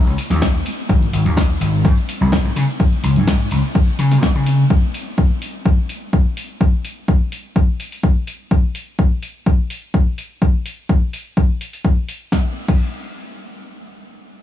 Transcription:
0.06 slap bass C#2, closed hi-hat
0.18 open hi-hat
0.30 slap bass D#2, snare, open hi-hat
0.42 kick, snare, closed hi-hat
0.54 closed hi-hat
0.66 open hi-hat
0.89 slap bass G#1, kick, closed hi-hat
1.02 closed hi-hat
1.13 slap bass G#1, open hi-hat
1.25 slap bass D#2, closed hi-hat
1.37 kick, snare, closed hi-hat
1.50 closed hi-hat
1.61 slap bass G#1, open hi-hat
1.85 slap bass G#2, kick, closed hi-hat
1.98 closed hi-hat
2.09 open hi-hat
2.21 slap bass C2
2.32 kick, snare, closed hi-hat
2.45 slap bass G#2, closed hi-hat
2.56 slap bass C#3, open hi-hat
2.80 kick, closed hi-hat
2.92 muted slap bass stroke, closed hi-hat
3.04 slap bass C#2, open hi-hat
3.16 slap bass G#2, closed hi-hat
3.27 kick, snare, closed hi-hat
3.40 closed hi-hat
3.51 slap bass C#2, open hi-hat
3.75 kick, closed hi-hat
3.87 muted slap bass stroke, closed hi-hat
3.99 slap bass C#3, open hi-hat
4.11 snare, open hi-hat
4.23 slap bass G#2, kick, snare, closed hi-hat
4.35 slap bass C#3, closed hi-hat
4.46 open hi-hat
4.70 kick
4.94 open hi-hat
5.18 kick
5.42 open hi-hat
5.66 kick
5.89 open hi-hat
6.13 kick
6.37 open hi-hat
6.61 kick
6.84 open hi-hat
7.08 kick
7.32 open hi-hat
7.56 kick
7.80 open hi-hat
7.92 open hi-hat
8.03 kick
8.27 open hi-hat
8.51 kick
8.75 open hi-hat
8.99 kick
9.22 open hi-hat
9.46 kick
9.70 open hi-hat
9.94 kick
10.18 open hi-hat
10.42 kick
10.66 open hi-hat
10.89 kick
11.13 open hi-hat
11.37 kick
11.61 open hi-hat
11.73 open hi-hat
11.85 kick
12.09 open hi-hat
12.32 kick, snare
12.68 kick, crash

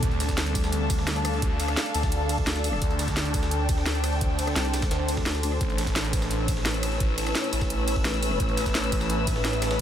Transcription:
Already playing: string section D4 A5, ambient pad A4
0.03 detuned saw bass D2, ambient pad D4 D5, kick, closed hi-hat
0.11 closed hi-hat
0.20 string section A4, snare, closed hi-hat, ride, tambourine
0.29 kick, snare, closed hi-hat, tambourine
0.38 snare, closed hi-hat
0.46 closed hi-hat
0.55 kick, closed hi-hat, ride, tambourine
0.64 snare, tambourine
0.72 closed hi-hat
0.80 string section F5
0.90 kick, closed hi-hat, ride, tambourine
0.99 snare
1.07 snare, closed hi-hat
1.16 cross-stick, closed hi-hat
1.25 cross-stick, closed hi-hat, open hi-hat, ride, tambourine
1.34 closed hi-hat
1.42 detuned saw bass D2, kick, closed hi-hat
1.60 closed hi-hat, ride, tambourine
1.68 cross-stick, closed hi-hat, tambourine
1.77 snare, closed hi-hat
1.86 closed hi-hat
1.94 detuned saw bass D2, closed hi-hat, ride, tambourine
2.03 kick, snare, tambourine
2.12 closed hi-hat, open hi-hat
2.29 closed hi-hat, ride, tambourine
2.38 kick
2.47 wobble bass D2, snare, closed hi-hat
2.56 snare, closed hi-hat
2.64 closed hi-hat, open hi-hat, ride, tambourine
2.73 cross-stick
2.82 detuned saw bass D2, ambient pad C5, kick, closed hi-hat
2.91 closed hi-hat
2.99 snare, closed hi-hat, ride, tambourine
3.08 string section G5, kick, snare, closed hi-hat, tambourine
3.17 snare, closed hi-hat
3.25 closed hi-hat
3.34 kick, closed hi-hat, ride, tambourine
3.43 snare, tambourine
3.51 closed hi-hat
3.69 kick, closed hi-hat, ride, tambourine
3.78 snare
3.86 snare, closed hi-hat
3.95 cross-stick, closed hi-hat
4.04 cross-stick, closed hi-hat, open hi-hat, ride, tambourine
4.13 closed hi-hat
4.21 detuned saw bass D2, kick, closed hi-hat
4.39 closed hi-hat, ride, tambourine
4.47 cross-stick, closed hi-hat, tambourine
4.56 wobble bass C2, snare, closed hi-hat
4.65 closed hi-hat
4.74 snare, closed hi-hat, ride, tambourine
4.82 kick, snare, closed hi-hat, tambourine
4.91 detuned saw bass D2, snare, closed hi-hat
5.08 closed hi-hat, ride, tambourine
5.17 kick, snare
5.26 wobble bass D2, snare, closed hi-hat
5.35 snare, closed hi-hat
5.43 closed hi-hat, open hi-hat, ride, tambourine
5.52 cross-stick
5.61 detuned saw bass A1, ambient pad A3 E4 B4, string section C#4, kick, closed hi-hat
5.70 closed hi-hat
5.78 snare, closed hi-hat, ride, tambourine
5.87 kick, snare, closed hi-hat, tambourine
5.92 string section B4, snare, closed hi-hat
6.04 closed hi-hat
6.13 kick, closed hi-hat, ride, tambourine
6.22 snare, tambourine
6.31 closed hi-hat
6.42 string section E6
6.48 kick, closed hi-hat, ride, tambourine
6.57 snare
6.66 snare, closed hi-hat
6.74 cross-stick, closed hi-hat
6.83 cross-stick, closed hi-hat, open hi-hat, ride, tambourine
6.92 closed hi-hat
7.00 detuned saw bass A1, kick, closed hi-hat
7.18 closed hi-hat, ride, tambourine
7.27 cross-stick, closed hi-hat, tambourine
7.35 snare, closed hi-hat
7.44 closed hi-hat
7.53 detuned saw bass A1, closed hi-hat, ride, tambourine
7.61 kick, snare, tambourine
7.70 closed hi-hat, open hi-hat
7.88 closed hi-hat, ride, tambourine
7.96 kick
8.05 wobble bass A1, snare, closed hi-hat
8.14 snare, closed hi-hat
8.23 closed hi-hat, open hi-hat, ride, tambourine
8.31 cross-stick
8.40 detuned saw bass A1, ambient pad D#4, kick, closed hi-hat
8.49 closed hi-hat
8.57 snare, closed hi-hat, ride, tambourine
8.66 kick, snare, closed hi-hat, tambourine
8.75 snare, closed hi-hat
8.84 closed hi-hat
8.92 kick, closed hi-hat, ride, tambourine
9.01 snare, tambourine
9.10 closed hi-hat
9.27 kick, closed hi-hat, ride, tambourine
9.36 snare
9.45 snare, closed hi-hat
9.53 cross-stick, closed hi-hat
9.62 cross-stick, snare, closed hi-hat, open hi-hat, ride, tambourine
9.71 snare, closed hi-hat

